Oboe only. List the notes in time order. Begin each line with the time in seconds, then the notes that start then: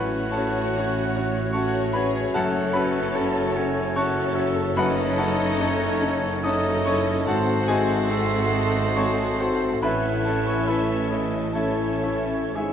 Already playing: F#5
2.34 F#5
3.16 A5
3.56 G#5
3.97 F#5
4.35 E5
4.77 D#5
5.62 C#5
6.45 D#5
7.28 C5
8.10 E5
8.53 D#5
9.82 F#5
10.68 E5
11.10 D#5
11.54 C#5
12.56 E5